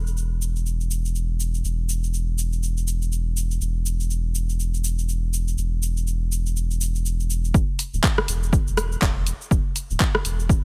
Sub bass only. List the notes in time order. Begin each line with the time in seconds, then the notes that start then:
Already playing: E1
1.64 E1
3.61 E1
5.58 E1
7.54 E1
7.93 D1
8.28 E1
8.67 E1
9.02 E1
9.51 E1
9.90 D1
10.25 E1